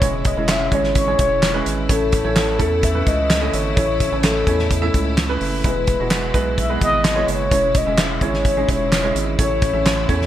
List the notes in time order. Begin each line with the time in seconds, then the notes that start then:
Already playing: E3 G#3 E4 C#5
0.02 E1 C#3 E3 G#3 C#4 E4 C#5, kick, closed hi-hat
0.25 D#5, kick, closed hi-hat
0.37 E1 G#3 C#4 E4 C#5
0.48 E5, snare, clap, closed hi-hat
0.72 G#1 G#3 C#4 E4 C#5, kick, closed hi-hat
0.84 snare
0.95 C#5, kick, closed hi-hat
1.07 G#3 C#4 E4 C#5
1.19 E1 C#5, kick, closed hi-hat
1.42 snare, clap, closed hi-hat
1.54 G#3 C#4 E4 B4
1.66 G#1, closed hi-hat
1.89 A1 A2 C#3 A3 C#4 E4 A4 C#5, kick, closed hi-hat
2.12 kick, closed hi-hat
2.24 A1 A3 C#4 E4 C#5
2.36 snare, clap, closed hi-hat
2.58 E2 A3 C#4 E4 A4, kick, closed hi-hat
2.83 E5, kick, closed hi-hat
2.94 A3 C#4 E4 B4
3.07 C#2 D#5, kick, closed hi-hat
3.30 snare, clap, closed hi-hat
3.41 A3 C#4 E4 D#5
3.53 G#1 C#5, closed hi-hat
3.76 A1 A2 A3 C#4 E4 C#5, kick, closed hi-hat
4.00 kick, closed hi-hat
4.12 A1 A3 C#4 E4 C#5
4.23 A4, snare, clap, closed hi-hat
4.47 E2 A3 C#4 E4 C#5, kick, closed hi-hat
4.59 snare
4.71 kick, closed hi-hat
4.82 A3 C#4 E4 E5
4.94 C#2, kick, closed hi-hat
5.18 snare, clap, closed hi-hat
5.29 A3 C#4 E4 B4
5.41 F#1, open hi-hat
5.64 E1 B2 E3 G#3 B3 E4 B4, kick, closed hi-hat
5.87 kick, closed hi-hat
6.00 E1 G#3 B3 E4 F#4
6.10 snare, clap, closed hi-hat
6.34 B1 G#3 B3 E4 B4, kick, closed hi-hat
6.58 E5, kick, closed hi-hat
6.69 G#3 B3 E4 B4
6.81 G#1 D#5, kick, closed hi-hat
7.05 snare, clap, closed hi-hat
7.16 G#3 B3 E4 C#5
7.28 F#1 C#5, closed hi-hat
7.51 E1 C#3 E3 G#3 C#4 E4 C#5, kick, closed hi-hat
7.75 D#5, kick, closed hi-hat
7.86 E1 G#3 C#4 E4 E5
7.97 E5, snare, clap, closed hi-hat
8.21 G#1 G#3 C#4 E4 C#5, kick, closed hi-hat
8.34 snare
8.45 C#5, kick, closed hi-hat
8.57 G#3 C#4 D#4 G#4
8.63 E4
8.68 E1 C#5, kick, closed hi-hat
8.92 snare, clap, closed hi-hat
9.03 G#3 C#4 E4 C#5
9.15 G#1, closed hi-hat
9.38 A1 A2 E3 A3 C#4 E4 C#5, kick, closed hi-hat
9.62 kick, closed hi-hat
9.73 A1 A3 C#4 E4 E5
9.86 snare, clap, closed hi-hat
10.09 E2 A3 C#4 E4 C#5, kick, closed hi-hat
10.22 snare